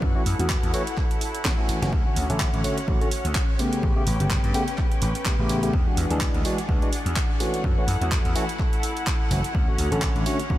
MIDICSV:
0, 0, Header, 1, 6, 480
1, 0, Start_track
1, 0, Key_signature, 2, "major"
1, 0, Tempo, 476190
1, 23, Time_signature, 4, 2, 24, 8
1, 10666, End_track
2, 0, Start_track
2, 0, Title_t, "String section"
2, 0, Program_c, 0, 48
2, 0, Note_on_c, 0, 78, 88
2, 20, Note_on_c, 0, 69, 72
2, 22, Note_on_c, 0, 64, 77
2, 1903, Note_off_c, 0, 78, 0
2, 1923, Note_off_c, 0, 64, 0
2, 1923, Note_off_c, 0, 69, 0
2, 1946, Note_on_c, 0, 61, 80
2, 1948, Note_on_c, 0, 73, 69
2, 1948, Note_on_c, 0, 78, 83
2, 3608, Note_off_c, 0, 61, 0
2, 3609, Note_off_c, 0, 73, 0
2, 3609, Note_off_c, 0, 78, 0
2, 3621, Note_on_c, 0, 61, 82
2, 3622, Note_on_c, 0, 79, 90
2, 3624, Note_on_c, 0, 71, 74
2, 5761, Note_off_c, 0, 61, 0
2, 5761, Note_off_c, 0, 79, 0
2, 5762, Note_off_c, 0, 71, 0
2, 5784, Note_on_c, 0, 62, 81
2, 5785, Note_on_c, 0, 68, 72
2, 5785, Note_on_c, 0, 78, 88
2, 7684, Note_off_c, 0, 62, 0
2, 7685, Note_off_c, 0, 68, 0
2, 7701, Note_on_c, 0, 64, 83
2, 7701, Note_on_c, 0, 69, 73
2, 9603, Note_off_c, 0, 64, 0
2, 9603, Note_off_c, 0, 69, 0
2, 9624, Note_on_c, 0, 61, 81
2, 9625, Note_on_c, 0, 73, 73
2, 10666, Note_off_c, 0, 61, 0
2, 10666, Note_off_c, 0, 73, 0
2, 10666, Note_off_c, 0, 78, 0
2, 10666, End_track
3, 0, Start_track
3, 0, Title_t, "Tine electric piano"
3, 0, Program_c, 1, 4
3, 0, Note_on_c, 1, 52, 90
3, 0, Note_on_c, 1, 57, 81
3, 0, Note_on_c, 1, 61, 77
3, 0, Note_on_c, 1, 66, 101
3, 121, Note_off_c, 1, 52, 0
3, 123, Note_off_c, 1, 57, 0
3, 124, Note_off_c, 1, 61, 0
3, 125, Note_off_c, 1, 66, 0
3, 151, Note_on_c, 1, 52, 93
3, 152, Note_on_c, 1, 57, 85
3, 156, Note_on_c, 1, 61, 83
3, 159, Note_on_c, 1, 66, 104
3, 215, Note_off_c, 1, 52, 0
3, 216, Note_off_c, 1, 57, 0
3, 218, Note_off_c, 1, 61, 0
3, 220, Note_off_c, 1, 66, 0
3, 390, Note_on_c, 1, 52, 72
3, 394, Note_on_c, 1, 57, 69
3, 397, Note_on_c, 1, 61, 66
3, 399, Note_on_c, 1, 66, 83
3, 714, Note_off_c, 1, 52, 0
3, 716, Note_off_c, 1, 57, 0
3, 717, Note_off_c, 1, 61, 0
3, 718, Note_off_c, 1, 66, 0
3, 737, Note_on_c, 1, 52, 92
3, 741, Note_on_c, 1, 57, 91
3, 744, Note_on_c, 1, 61, 90
3, 747, Note_on_c, 1, 66, 106
3, 818, Note_off_c, 1, 52, 0
3, 821, Note_off_c, 1, 57, 0
3, 822, Note_off_c, 1, 61, 0
3, 824, Note_off_c, 1, 66, 0
3, 1456, Note_on_c, 1, 52, 86
3, 1459, Note_on_c, 1, 57, 78
3, 1461, Note_on_c, 1, 61, 77
3, 1462, Note_on_c, 1, 66, 92
3, 1538, Note_off_c, 1, 52, 0
3, 1539, Note_off_c, 1, 57, 0
3, 1540, Note_off_c, 1, 61, 0
3, 1541, Note_off_c, 1, 66, 0
3, 1591, Note_on_c, 1, 52, 89
3, 1594, Note_on_c, 1, 57, 83
3, 1597, Note_on_c, 1, 61, 80
3, 1598, Note_on_c, 1, 66, 100
3, 1802, Note_off_c, 1, 52, 0
3, 1804, Note_off_c, 1, 57, 0
3, 1805, Note_off_c, 1, 61, 0
3, 1806, Note_off_c, 1, 66, 0
3, 1830, Note_on_c, 1, 52, 74
3, 1834, Note_on_c, 1, 57, 67
3, 1838, Note_on_c, 1, 61, 70
3, 1840, Note_on_c, 1, 66, 85
3, 1926, Note_off_c, 1, 52, 0
3, 1929, Note_off_c, 1, 57, 0
3, 1930, Note_off_c, 1, 61, 0
3, 1931, Note_off_c, 1, 66, 0
3, 2070, Note_on_c, 1, 50, 73
3, 2075, Note_on_c, 1, 57, 67
3, 2075, Note_on_c, 1, 61, 72
3, 2079, Note_on_c, 1, 66, 84
3, 2282, Note_off_c, 1, 50, 0
3, 2284, Note_off_c, 1, 57, 0
3, 2284, Note_off_c, 1, 61, 0
3, 2286, Note_off_c, 1, 66, 0
3, 2311, Note_on_c, 1, 50, 91
3, 2314, Note_on_c, 1, 57, 84
3, 2318, Note_on_c, 1, 61, 86
3, 2320, Note_on_c, 1, 69, 101
3, 2634, Note_off_c, 1, 50, 0
3, 2636, Note_off_c, 1, 57, 0
3, 2638, Note_off_c, 1, 61, 0
3, 2639, Note_off_c, 1, 69, 0
3, 2657, Note_on_c, 1, 50, 81
3, 2659, Note_on_c, 1, 57, 76
3, 2662, Note_on_c, 1, 61, 76
3, 2666, Note_on_c, 1, 66, 86
3, 2785, Note_off_c, 1, 50, 0
3, 2786, Note_off_c, 1, 57, 0
3, 2788, Note_off_c, 1, 61, 0
3, 2790, Note_off_c, 1, 66, 0
3, 2896, Note_on_c, 1, 50, 88
3, 2896, Note_on_c, 1, 57, 78
3, 2900, Note_on_c, 1, 61, 78
3, 2903, Note_on_c, 1, 66, 91
3, 3002, Note_off_c, 1, 50, 0
3, 3002, Note_off_c, 1, 57, 0
3, 3004, Note_off_c, 1, 61, 0
3, 3005, Note_off_c, 1, 66, 0
3, 3031, Note_on_c, 1, 50, 92
3, 3032, Note_on_c, 1, 57, 88
3, 3035, Note_on_c, 1, 61, 87
3, 3039, Note_on_c, 1, 66, 108
3, 3095, Note_off_c, 1, 50, 0
3, 3096, Note_off_c, 1, 57, 0
3, 3098, Note_off_c, 1, 61, 0
3, 3100, Note_off_c, 1, 66, 0
3, 3620, Note_on_c, 1, 49, 93
3, 3622, Note_on_c, 1, 57, 80
3, 3624, Note_on_c, 1, 59, 83
3, 3627, Note_on_c, 1, 67, 100
3, 3964, Note_off_c, 1, 49, 0
3, 3965, Note_off_c, 1, 57, 0
3, 3966, Note_off_c, 1, 59, 0
3, 3967, Note_off_c, 1, 67, 0
3, 3991, Note_on_c, 1, 49, 97
3, 3994, Note_on_c, 1, 57, 85
3, 3998, Note_on_c, 1, 59, 87
3, 4001, Note_on_c, 1, 67, 105
3, 4056, Note_off_c, 1, 49, 0
3, 4057, Note_off_c, 1, 57, 0
3, 4059, Note_off_c, 1, 59, 0
3, 4061, Note_off_c, 1, 67, 0
3, 4236, Note_on_c, 1, 49, 76
3, 4236, Note_on_c, 1, 57, 66
3, 4241, Note_on_c, 1, 59, 66
3, 4245, Note_on_c, 1, 67, 84
3, 4557, Note_off_c, 1, 49, 0
3, 4557, Note_off_c, 1, 57, 0
3, 4559, Note_off_c, 1, 59, 0
3, 4561, Note_off_c, 1, 67, 0
3, 4574, Note_on_c, 1, 49, 94
3, 4578, Note_on_c, 1, 57, 85
3, 4581, Note_on_c, 1, 59, 84
3, 4584, Note_on_c, 1, 67, 109
3, 4657, Note_off_c, 1, 49, 0
3, 4659, Note_off_c, 1, 57, 0
3, 4661, Note_off_c, 1, 59, 0
3, 4662, Note_off_c, 1, 67, 0
3, 5293, Note_on_c, 1, 49, 84
3, 5298, Note_on_c, 1, 57, 78
3, 5298, Note_on_c, 1, 59, 81
3, 5302, Note_on_c, 1, 67, 97
3, 5377, Note_off_c, 1, 49, 0
3, 5379, Note_off_c, 1, 57, 0
3, 5379, Note_off_c, 1, 59, 0
3, 5381, Note_off_c, 1, 67, 0
3, 5431, Note_on_c, 1, 49, 88
3, 5434, Note_on_c, 1, 57, 81
3, 5436, Note_on_c, 1, 59, 84
3, 5438, Note_on_c, 1, 67, 98
3, 5642, Note_off_c, 1, 49, 0
3, 5643, Note_off_c, 1, 57, 0
3, 5645, Note_off_c, 1, 59, 0
3, 5646, Note_off_c, 1, 67, 0
3, 5672, Note_on_c, 1, 49, 75
3, 5674, Note_on_c, 1, 57, 69
3, 5676, Note_on_c, 1, 59, 70
3, 5679, Note_on_c, 1, 67, 82
3, 5767, Note_off_c, 1, 49, 0
3, 5768, Note_off_c, 1, 57, 0
3, 5769, Note_off_c, 1, 59, 0
3, 5771, Note_off_c, 1, 67, 0
3, 5912, Note_on_c, 1, 52, 74
3, 5915, Note_on_c, 1, 56, 69
3, 5918, Note_on_c, 1, 62, 71
3, 5919, Note_on_c, 1, 66, 85
3, 6122, Note_off_c, 1, 52, 0
3, 6124, Note_off_c, 1, 56, 0
3, 6125, Note_off_c, 1, 62, 0
3, 6126, Note_off_c, 1, 66, 0
3, 6150, Note_on_c, 1, 52, 95
3, 6153, Note_on_c, 1, 56, 88
3, 6156, Note_on_c, 1, 62, 89
3, 6159, Note_on_c, 1, 68, 100
3, 6474, Note_off_c, 1, 52, 0
3, 6476, Note_off_c, 1, 56, 0
3, 6477, Note_off_c, 1, 62, 0
3, 6479, Note_off_c, 1, 68, 0
3, 6498, Note_on_c, 1, 52, 83
3, 6500, Note_on_c, 1, 56, 74
3, 6503, Note_on_c, 1, 62, 77
3, 6506, Note_on_c, 1, 66, 92
3, 6626, Note_off_c, 1, 52, 0
3, 6627, Note_off_c, 1, 56, 0
3, 6629, Note_off_c, 1, 62, 0
3, 6630, Note_off_c, 1, 66, 0
3, 6736, Note_on_c, 1, 52, 89
3, 6740, Note_on_c, 1, 56, 79
3, 6743, Note_on_c, 1, 62, 78
3, 6743, Note_on_c, 1, 66, 97
3, 6842, Note_off_c, 1, 52, 0
3, 6844, Note_off_c, 1, 56, 0
3, 6845, Note_off_c, 1, 62, 0
3, 6846, Note_off_c, 1, 66, 0
3, 6873, Note_on_c, 1, 52, 99
3, 6876, Note_on_c, 1, 56, 85
3, 6879, Note_on_c, 1, 62, 91
3, 6882, Note_on_c, 1, 66, 108
3, 6937, Note_off_c, 1, 52, 0
3, 6938, Note_off_c, 1, 56, 0
3, 6940, Note_off_c, 1, 62, 0
3, 6941, Note_off_c, 1, 66, 0
3, 7461, Note_on_c, 1, 52, 91
3, 7461, Note_on_c, 1, 57, 82
3, 7464, Note_on_c, 1, 61, 86
3, 7467, Note_on_c, 1, 66, 97
3, 7804, Note_off_c, 1, 52, 0
3, 7805, Note_off_c, 1, 57, 0
3, 7806, Note_off_c, 1, 61, 0
3, 7807, Note_off_c, 1, 66, 0
3, 7835, Note_on_c, 1, 52, 90
3, 7839, Note_on_c, 1, 57, 87
3, 7843, Note_on_c, 1, 61, 87
3, 7844, Note_on_c, 1, 66, 105
3, 7898, Note_off_c, 1, 52, 0
3, 7900, Note_off_c, 1, 57, 0
3, 7901, Note_off_c, 1, 61, 0
3, 7902, Note_off_c, 1, 66, 0
3, 8078, Note_on_c, 1, 52, 74
3, 8079, Note_on_c, 1, 57, 71
3, 8082, Note_on_c, 1, 61, 66
3, 8085, Note_on_c, 1, 66, 85
3, 8398, Note_off_c, 1, 52, 0
3, 8398, Note_off_c, 1, 57, 0
3, 8400, Note_off_c, 1, 61, 0
3, 8401, Note_off_c, 1, 66, 0
3, 8419, Note_on_c, 1, 52, 101
3, 8422, Note_on_c, 1, 57, 88
3, 8427, Note_on_c, 1, 61, 91
3, 8429, Note_on_c, 1, 66, 106
3, 8500, Note_off_c, 1, 52, 0
3, 8501, Note_off_c, 1, 57, 0
3, 8503, Note_off_c, 1, 61, 0
3, 8504, Note_off_c, 1, 66, 0
3, 9380, Note_on_c, 1, 52, 78
3, 9382, Note_on_c, 1, 57, 74
3, 9385, Note_on_c, 1, 61, 73
3, 9387, Note_on_c, 1, 66, 91
3, 9460, Note_off_c, 1, 52, 0
3, 9461, Note_off_c, 1, 57, 0
3, 9463, Note_off_c, 1, 61, 0
3, 9463, Note_off_c, 1, 66, 0
3, 9755, Note_on_c, 1, 50, 77
3, 9756, Note_on_c, 1, 57, 70
3, 9759, Note_on_c, 1, 61, 72
3, 9764, Note_on_c, 1, 66, 85
3, 9964, Note_off_c, 1, 50, 0
3, 9964, Note_off_c, 1, 57, 0
3, 9966, Note_off_c, 1, 61, 0
3, 9969, Note_off_c, 1, 66, 0
3, 9989, Note_on_c, 1, 50, 93
3, 9993, Note_on_c, 1, 57, 86
3, 9995, Note_on_c, 1, 61, 86
3, 9998, Note_on_c, 1, 69, 103
3, 10313, Note_off_c, 1, 50, 0
3, 10316, Note_off_c, 1, 57, 0
3, 10316, Note_off_c, 1, 61, 0
3, 10318, Note_off_c, 1, 69, 0
3, 10340, Note_on_c, 1, 50, 86
3, 10342, Note_on_c, 1, 57, 73
3, 10346, Note_on_c, 1, 61, 73
3, 10348, Note_on_c, 1, 66, 90
3, 10467, Note_off_c, 1, 50, 0
3, 10468, Note_off_c, 1, 57, 0
3, 10470, Note_off_c, 1, 61, 0
3, 10471, Note_off_c, 1, 66, 0
3, 10579, Note_on_c, 1, 50, 87
3, 10582, Note_on_c, 1, 57, 81
3, 10585, Note_on_c, 1, 61, 79
3, 10588, Note_on_c, 1, 66, 95
3, 10666, Note_off_c, 1, 50, 0
3, 10666, Note_off_c, 1, 57, 0
3, 10666, Note_off_c, 1, 61, 0
3, 10666, Note_off_c, 1, 66, 0
3, 10666, End_track
4, 0, Start_track
4, 0, Title_t, "Slap bass"
4, 0, Program_c, 2, 36
4, 21, Note_on_c, 2, 42, 91
4, 123, Note_off_c, 2, 42, 0
4, 263, Note_on_c, 2, 42, 78
4, 363, Note_off_c, 2, 42, 0
4, 397, Note_on_c, 2, 40, 97
4, 569, Note_off_c, 2, 40, 0
4, 637, Note_on_c, 2, 40, 95
4, 716, Note_off_c, 2, 40, 0
4, 1836, Note_on_c, 2, 30, 93
4, 1915, Note_off_c, 2, 30, 0
4, 1941, Note_on_c, 2, 38, 93
4, 2043, Note_off_c, 2, 38, 0
4, 2180, Note_on_c, 2, 38, 80
4, 2282, Note_off_c, 2, 38, 0
4, 2315, Note_on_c, 2, 33, 93
4, 2488, Note_off_c, 2, 33, 0
4, 2556, Note_on_c, 2, 33, 99
4, 2635, Note_off_c, 2, 33, 0
4, 2902, Note_on_c, 2, 33, 98
4, 3003, Note_off_c, 2, 33, 0
4, 3274, Note_on_c, 2, 38, 94
4, 3354, Note_off_c, 2, 38, 0
4, 3862, Note_on_c, 2, 33, 89
4, 3963, Note_off_c, 2, 33, 0
4, 4100, Note_on_c, 2, 33, 77
4, 4202, Note_off_c, 2, 33, 0
4, 4234, Note_on_c, 2, 31, 92
4, 4407, Note_off_c, 2, 31, 0
4, 4474, Note_on_c, 2, 43, 96
4, 4554, Note_off_c, 2, 43, 0
4, 5060, Note_on_c, 2, 33, 85
4, 5162, Note_off_c, 2, 33, 0
4, 5436, Note_on_c, 2, 33, 96
4, 5739, Note_off_c, 2, 33, 0
4, 5782, Note_on_c, 2, 40, 89
4, 5883, Note_off_c, 2, 40, 0
4, 6018, Note_on_c, 2, 40, 83
4, 6121, Note_off_c, 2, 40, 0
4, 6154, Note_on_c, 2, 38, 100
4, 6327, Note_off_c, 2, 38, 0
4, 6394, Note_on_c, 2, 38, 96
4, 6474, Note_off_c, 2, 38, 0
4, 6741, Note_on_c, 2, 38, 97
4, 6842, Note_off_c, 2, 38, 0
4, 7114, Note_on_c, 2, 40, 100
4, 7194, Note_off_c, 2, 40, 0
4, 7702, Note_on_c, 2, 42, 92
4, 7803, Note_off_c, 2, 42, 0
4, 7940, Note_on_c, 2, 42, 78
4, 8042, Note_off_c, 2, 42, 0
4, 8075, Note_on_c, 2, 40, 98
4, 8248, Note_off_c, 2, 40, 0
4, 8315, Note_on_c, 2, 40, 96
4, 8395, Note_off_c, 2, 40, 0
4, 9381, Note_on_c, 2, 30, 89
4, 9483, Note_off_c, 2, 30, 0
4, 9624, Note_on_c, 2, 38, 89
4, 9724, Note_off_c, 2, 38, 0
4, 9862, Note_on_c, 2, 38, 77
4, 9963, Note_off_c, 2, 38, 0
4, 9996, Note_on_c, 2, 33, 96
4, 10168, Note_off_c, 2, 33, 0
4, 10237, Note_on_c, 2, 33, 101
4, 10316, Note_off_c, 2, 33, 0
4, 10584, Note_on_c, 2, 33, 95
4, 10666, Note_off_c, 2, 33, 0
4, 10666, End_track
5, 0, Start_track
5, 0, Title_t, "Muted slap bass strokes"
5, 1701, Note_on_c, 9, 29, 41
5, 1802, Note_off_c, 9, 29, 0
5, 10666, End_track
6, 0, Start_track
6, 0, Title_t, "Drums"
6, 22, Note_on_c, 9, 36, 109
6, 122, Note_off_c, 9, 36, 0
6, 263, Note_on_c, 9, 46, 95
6, 364, Note_off_c, 9, 46, 0
6, 398, Note_on_c, 9, 42, 70
6, 499, Note_off_c, 9, 42, 0
6, 499, Note_on_c, 9, 39, 120
6, 502, Note_on_c, 9, 36, 111
6, 600, Note_off_c, 9, 39, 0
6, 602, Note_off_c, 9, 36, 0
6, 639, Note_on_c, 9, 42, 54
6, 740, Note_off_c, 9, 42, 0
6, 743, Note_on_c, 9, 46, 87
6, 844, Note_off_c, 9, 46, 0
6, 879, Note_on_c, 9, 42, 65
6, 980, Note_off_c, 9, 42, 0
6, 981, Note_on_c, 9, 36, 105
6, 981, Note_on_c, 9, 39, 36
6, 1082, Note_off_c, 9, 36, 0
6, 1082, Note_off_c, 9, 39, 0
6, 1118, Note_on_c, 9, 42, 55
6, 1218, Note_off_c, 9, 42, 0
6, 1222, Note_on_c, 9, 46, 100
6, 1323, Note_off_c, 9, 46, 0
6, 1356, Note_on_c, 9, 42, 65
6, 1457, Note_off_c, 9, 42, 0
6, 1458, Note_on_c, 9, 39, 123
6, 1461, Note_on_c, 9, 38, 102
6, 1462, Note_on_c, 9, 36, 118
6, 1559, Note_off_c, 9, 39, 0
6, 1562, Note_off_c, 9, 38, 0
6, 1563, Note_off_c, 9, 36, 0
6, 1702, Note_on_c, 9, 46, 83
6, 1803, Note_off_c, 9, 46, 0
6, 1839, Note_on_c, 9, 38, 73
6, 1839, Note_on_c, 9, 42, 60
6, 1940, Note_off_c, 9, 38, 0
6, 1940, Note_off_c, 9, 42, 0
6, 1942, Note_on_c, 9, 36, 119
6, 2043, Note_off_c, 9, 36, 0
6, 2182, Note_on_c, 9, 46, 105
6, 2282, Note_off_c, 9, 46, 0
6, 2317, Note_on_c, 9, 42, 67
6, 2418, Note_off_c, 9, 42, 0
6, 2418, Note_on_c, 9, 39, 127
6, 2422, Note_on_c, 9, 36, 118
6, 2519, Note_off_c, 9, 39, 0
6, 2522, Note_off_c, 9, 36, 0
6, 2557, Note_on_c, 9, 42, 56
6, 2658, Note_off_c, 9, 42, 0
6, 2664, Note_on_c, 9, 46, 92
6, 2765, Note_off_c, 9, 46, 0
6, 2798, Note_on_c, 9, 42, 68
6, 2899, Note_off_c, 9, 42, 0
6, 2902, Note_on_c, 9, 36, 112
6, 3003, Note_off_c, 9, 36, 0
6, 3039, Note_on_c, 9, 42, 54
6, 3140, Note_off_c, 9, 42, 0
6, 3140, Note_on_c, 9, 46, 108
6, 3241, Note_off_c, 9, 46, 0
6, 3275, Note_on_c, 9, 42, 68
6, 3376, Note_off_c, 9, 42, 0
6, 3376, Note_on_c, 9, 39, 123
6, 3382, Note_on_c, 9, 36, 127
6, 3476, Note_off_c, 9, 39, 0
6, 3483, Note_off_c, 9, 36, 0
6, 3621, Note_on_c, 9, 46, 89
6, 3722, Note_off_c, 9, 46, 0
6, 3756, Note_on_c, 9, 42, 65
6, 3857, Note_off_c, 9, 42, 0
6, 3862, Note_on_c, 9, 36, 117
6, 3963, Note_off_c, 9, 36, 0
6, 4100, Note_on_c, 9, 46, 106
6, 4201, Note_off_c, 9, 46, 0
6, 4235, Note_on_c, 9, 42, 69
6, 4336, Note_off_c, 9, 42, 0
6, 4337, Note_on_c, 9, 39, 120
6, 4342, Note_on_c, 9, 36, 118
6, 4437, Note_off_c, 9, 39, 0
6, 4443, Note_off_c, 9, 36, 0
6, 4475, Note_on_c, 9, 42, 51
6, 4576, Note_off_c, 9, 42, 0
6, 4580, Note_on_c, 9, 46, 93
6, 4681, Note_off_c, 9, 46, 0
6, 4715, Note_on_c, 9, 42, 65
6, 4815, Note_off_c, 9, 42, 0
6, 4816, Note_on_c, 9, 39, 35
6, 4822, Note_on_c, 9, 36, 115
6, 4917, Note_off_c, 9, 39, 0
6, 4923, Note_off_c, 9, 36, 0
6, 4954, Note_on_c, 9, 42, 50
6, 5055, Note_off_c, 9, 42, 0
6, 5057, Note_on_c, 9, 46, 108
6, 5158, Note_off_c, 9, 46, 0
6, 5193, Note_on_c, 9, 42, 66
6, 5293, Note_off_c, 9, 42, 0
6, 5293, Note_on_c, 9, 39, 124
6, 5301, Note_on_c, 9, 36, 121
6, 5394, Note_off_c, 9, 39, 0
6, 5402, Note_off_c, 9, 36, 0
6, 5538, Note_on_c, 9, 46, 89
6, 5639, Note_off_c, 9, 46, 0
6, 5674, Note_on_c, 9, 42, 59
6, 5775, Note_off_c, 9, 42, 0
6, 5781, Note_on_c, 9, 36, 120
6, 5882, Note_off_c, 9, 36, 0
6, 6021, Note_on_c, 9, 46, 107
6, 6122, Note_off_c, 9, 46, 0
6, 6154, Note_on_c, 9, 42, 62
6, 6255, Note_off_c, 9, 42, 0
6, 6256, Note_on_c, 9, 39, 118
6, 6261, Note_on_c, 9, 36, 122
6, 6357, Note_off_c, 9, 39, 0
6, 6362, Note_off_c, 9, 36, 0
6, 6395, Note_on_c, 9, 42, 50
6, 6496, Note_off_c, 9, 42, 0
6, 6501, Note_on_c, 9, 46, 97
6, 6602, Note_off_c, 9, 46, 0
6, 6636, Note_on_c, 9, 42, 64
6, 6737, Note_off_c, 9, 42, 0
6, 6741, Note_on_c, 9, 36, 115
6, 6842, Note_off_c, 9, 36, 0
6, 6877, Note_on_c, 9, 42, 52
6, 6978, Note_off_c, 9, 42, 0
6, 6981, Note_on_c, 9, 46, 108
6, 7082, Note_off_c, 9, 46, 0
6, 7118, Note_on_c, 9, 42, 61
6, 7218, Note_on_c, 9, 39, 121
6, 7219, Note_off_c, 9, 42, 0
6, 7222, Note_on_c, 9, 36, 122
6, 7319, Note_off_c, 9, 39, 0
6, 7323, Note_off_c, 9, 36, 0
6, 7462, Note_on_c, 9, 46, 89
6, 7562, Note_off_c, 9, 46, 0
6, 7598, Note_on_c, 9, 42, 62
6, 7699, Note_off_c, 9, 42, 0
6, 7702, Note_on_c, 9, 36, 122
6, 7803, Note_off_c, 9, 36, 0
6, 7942, Note_on_c, 9, 46, 107
6, 8043, Note_off_c, 9, 46, 0
6, 8079, Note_on_c, 9, 42, 61
6, 8180, Note_off_c, 9, 42, 0
6, 8180, Note_on_c, 9, 39, 118
6, 8182, Note_on_c, 9, 36, 127
6, 8281, Note_off_c, 9, 39, 0
6, 8283, Note_off_c, 9, 36, 0
6, 8318, Note_on_c, 9, 42, 50
6, 8419, Note_off_c, 9, 42, 0
6, 8423, Note_on_c, 9, 46, 94
6, 8523, Note_off_c, 9, 46, 0
6, 8559, Note_on_c, 9, 42, 62
6, 8660, Note_off_c, 9, 42, 0
6, 8661, Note_on_c, 9, 39, 33
6, 8663, Note_on_c, 9, 36, 117
6, 8762, Note_off_c, 9, 39, 0
6, 8764, Note_off_c, 9, 36, 0
6, 8799, Note_on_c, 9, 42, 50
6, 8900, Note_off_c, 9, 42, 0
6, 8903, Note_on_c, 9, 46, 111
6, 9004, Note_off_c, 9, 46, 0
6, 9038, Note_on_c, 9, 42, 60
6, 9139, Note_off_c, 9, 42, 0
6, 9139, Note_on_c, 9, 39, 117
6, 9143, Note_on_c, 9, 36, 122
6, 9240, Note_off_c, 9, 39, 0
6, 9244, Note_off_c, 9, 36, 0
6, 9384, Note_on_c, 9, 46, 89
6, 9485, Note_off_c, 9, 46, 0
6, 9519, Note_on_c, 9, 42, 59
6, 9620, Note_off_c, 9, 42, 0
6, 9624, Note_on_c, 9, 36, 122
6, 9725, Note_off_c, 9, 36, 0
6, 9863, Note_on_c, 9, 46, 108
6, 9964, Note_off_c, 9, 46, 0
6, 9999, Note_on_c, 9, 42, 61
6, 10098, Note_on_c, 9, 39, 114
6, 10100, Note_off_c, 9, 42, 0
6, 10104, Note_on_c, 9, 36, 113
6, 10199, Note_off_c, 9, 39, 0
6, 10205, Note_off_c, 9, 36, 0
6, 10240, Note_on_c, 9, 42, 49
6, 10341, Note_off_c, 9, 42, 0
6, 10343, Note_on_c, 9, 46, 93
6, 10444, Note_off_c, 9, 46, 0
6, 10478, Note_on_c, 9, 42, 59
6, 10579, Note_off_c, 9, 42, 0
6, 10584, Note_on_c, 9, 36, 117
6, 10666, Note_off_c, 9, 36, 0
6, 10666, End_track
0, 0, End_of_file